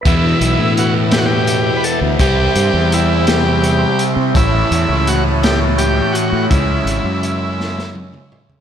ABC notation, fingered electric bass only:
X:1
M:6/8
L:1/16
Q:3/8=56
K:Ador
V:1 name="Fingered electric bass" clef=bass
E,,2 B,,, A,,8 D,, | C,,2 G,, E,,8 C, | A,,,2 E,, ^C,,8 A,, | ^C,,2 ^G,,, F,,8 ^C, |]